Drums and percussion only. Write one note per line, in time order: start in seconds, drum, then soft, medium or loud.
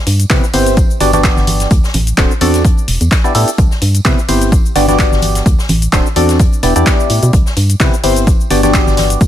0.07 closed hi-hat medium
0.07 open hi-hat loud
0.07 tambourine loud
0.19 closed hi-hat medium
0.19 tambourine soft
0.19 cabasa medium
0.30 kick loud
0.30 snare loud
0.30 clap loud
0.30 closed hi-hat soft
0.30 closed hi-hat medium
0.30 tambourine medium
0.30 cabasa medium
0.43 tambourine soft
0.43 cabasa soft
0.54 open hi-hat loud
0.54 open hi-hat medium
0.54 tambourine loud
0.66 closed hi-hat medium
0.66 tambourine soft
0.66 cabasa medium
0.77 kick loud
0.77 closed hi-hat soft
0.77 closed hi-hat medium
0.77 tambourine medium
0.77 cabasa medium
0.90 tambourine soft
0.90 cabasa soft
1.00 closed hi-hat medium
1.00 open hi-hat loud
1.00 tambourine medium
1.13 snare soft
1.13 closed hi-hat medium
1.13 tambourine soft
1.13 high conga medium
1.13 cabasa medium
1.24 kick loud
1.24 snare loud
1.24 clap loud
1.24 closed hi-hat medium
1.24 closed hi-hat soft
1.24 tambourine medium
1.24 cabasa soft
1.36 snare soft
1.36 tambourine soft
1.36 cabasa soft
1.47 closed hi-hat medium
1.47 open hi-hat loud
1.47 tambourine medium
1.47 high conga medium
1.60 snare soft
1.60 closed hi-hat medium
1.60 tambourine soft
1.60 cabasa medium
1.71 kick loud
1.71 closed hi-hat medium
1.71 closed hi-hat soft
1.71 tambourine medium
1.71 cabasa soft
1.83 snare medium
1.83 tambourine soft
1.83 cabasa soft
1.94 closed hi-hat medium
1.94 open hi-hat loud
1.94 tambourine medium
1.94 high conga medium
2.07 closed hi-hat medium
2.07 tambourine soft
2.07 cabasa medium
2.17 kick loud
2.17 snare loud
2.17 clap loud
2.17 closed hi-hat medium
2.17 closed hi-hat soft
2.17 tambourine soft
2.17 cabasa medium
2.31 tambourine soft
2.31 cabasa soft
2.41 closed hi-hat medium
2.41 open hi-hat loud
2.41 tambourine medium
2.41 high conga medium
2.54 snare soft
2.54 closed hi-hat medium
2.54 tambourine soft
2.54 cabasa medium
2.65 kick loud
2.65 closed hi-hat soft
2.65 closed hi-hat medium
2.65 tambourine soft
2.65 cabasa medium
2.77 tambourine soft
2.77 cabasa soft
2.88 closed hi-hat medium
2.88 open hi-hat loud
2.88 tambourine medium
3.01 closed hi-hat medium
3.01 tambourine soft
3.01 cabasa medium
3.11 kick loud
3.11 snare loud
3.11 clap loud
3.11 closed hi-hat soft
3.11 closed hi-hat medium
3.11 tambourine medium
3.11 cabasa medium
3.24 tambourine soft
3.24 cabasa soft
3.35 open hi-hat medium
3.35 open hi-hat loud
3.35 tambourine medium
3.48 closed hi-hat medium
3.48 tambourine soft
3.48 cabasa medium
3.58 kick loud
3.58 closed hi-hat medium
3.58 tambourine soft
3.58 cabasa medium
3.71 snare soft
3.71 tambourine soft
3.71 cabasa soft
3.82 closed hi-hat medium
3.82 open hi-hat loud
3.82 tambourine medium
3.95 closed hi-hat medium
3.95 tambourine soft
3.95 cabasa medium
4.05 kick loud
4.05 snare loud
4.05 clap loud
4.05 closed hi-hat soft
4.05 closed hi-hat medium
4.05 tambourine soft
4.05 cabasa medium
4.18 tambourine soft
4.18 cabasa soft
4.28 open hi-hat loud
4.28 open hi-hat medium
4.28 tambourine medium
4.42 closed hi-hat medium
4.42 tambourine soft
4.42 cabasa medium
4.52 kick loud
4.52 closed hi-hat soft
4.52 closed hi-hat medium
4.52 tambourine medium
4.52 cabasa medium
4.65 tambourine soft
4.65 cabasa soft
4.76 closed hi-hat medium
4.76 open hi-hat loud
4.76 tambourine medium
4.88 snare soft
4.88 closed hi-hat medium
4.88 tambourine soft
4.88 high conga medium
4.88 cabasa medium
4.99 kick loud
4.99 snare loud
4.99 clap loud
4.99 closed hi-hat soft
4.99 closed hi-hat medium
4.99 tambourine soft
4.99 cabasa medium
5.12 snare medium
5.12 tambourine soft
5.12 cabasa soft
5.22 closed hi-hat medium
5.22 open hi-hat loud
5.22 tambourine medium
5.22 high conga medium
5.35 snare soft
5.35 closed hi-hat medium
5.35 tambourine soft
5.35 cabasa medium
5.46 kick loud
5.46 closed hi-hat medium
5.46 closed hi-hat soft
5.46 tambourine medium
5.46 cabasa medium
5.58 snare medium
5.58 tambourine soft
5.58 cabasa soft
5.69 closed hi-hat medium
5.69 open hi-hat loud
5.69 tambourine medium
5.69 high conga loud
5.82 closed hi-hat medium
5.82 tambourine soft
5.82 cabasa medium
5.93 kick loud
5.93 snare loud
5.93 clap loud
5.93 closed hi-hat soft
5.93 closed hi-hat medium
5.93 tambourine soft
5.93 cabasa medium
6.06 tambourine soft
6.06 cabasa soft
6.16 closed hi-hat medium
6.16 open hi-hat loud
6.16 tambourine medium
6.16 high conga medium
6.29 snare soft
6.29 closed hi-hat medium
6.29 tambourine soft
6.29 cabasa medium
6.39 kick loud
6.39 closed hi-hat medium
6.39 closed hi-hat soft
6.39 tambourine soft
6.39 cabasa medium
6.52 tambourine soft
6.52 cabasa soft
6.63 closed hi-hat medium
6.63 open hi-hat loud
6.63 tambourine medium
6.76 closed hi-hat medium
6.76 tambourine soft
6.76 cabasa medium
6.86 kick loud
6.86 snare loud
6.86 clap loud
6.86 closed hi-hat medium
6.86 cabasa medium
6.99 tambourine soft
6.99 cabasa soft
7.10 closed hi-hat medium
7.10 open hi-hat loud
7.10 tambourine medium
7.23 closed hi-hat medium
7.23 tambourine soft
7.23 cabasa medium
7.33 kick loud
7.33 closed hi-hat medium
7.33 closed hi-hat soft
7.33 tambourine soft
7.33 cabasa medium
7.46 snare medium
7.46 tambourine soft
7.46 cabasa soft
7.57 closed hi-hat medium
7.57 open hi-hat loud
7.57 tambourine medium
7.70 closed hi-hat medium
7.70 tambourine soft
7.70 cabasa medium
7.80 kick loud
7.80 snare loud
7.80 clap loud
7.80 closed hi-hat medium
7.80 tambourine soft
7.80 cabasa medium
7.93 tambourine soft
7.93 cabasa soft
8.03 open hi-hat medium
8.03 open hi-hat loud
8.03 tambourine medium
8.16 closed hi-hat medium
8.16 tambourine soft
8.16 cabasa medium
8.27 kick loud
8.27 closed hi-hat medium
8.27 tambourine soft
8.27 cabasa medium
8.40 tambourine soft
8.40 cabasa soft
8.50 closed hi-hat medium
8.50 open hi-hat loud
8.50 tambourine medium
8.63 snare soft
8.63 closed hi-hat medium
8.63 tambourine soft
8.63 high conga medium
8.63 cabasa medium
8.74 kick medium
8.74 snare loud
8.74 clap loud
8.74 closed hi-hat medium
8.74 tambourine soft
8.74 cabasa medium
8.86 snare medium
8.86 tambourine soft
8.86 cabasa soft
8.97 snare loud
8.97 closed hi-hat medium
8.97 open hi-hat loud
8.97 tambourine medium
8.97 high conga medium
9.10 closed hi-hat medium
9.10 tambourine soft
9.10 cabasa medium
9.21 kick loud
9.21 closed hi-hat medium
9.21 tambourine medium
9.21 cabasa medium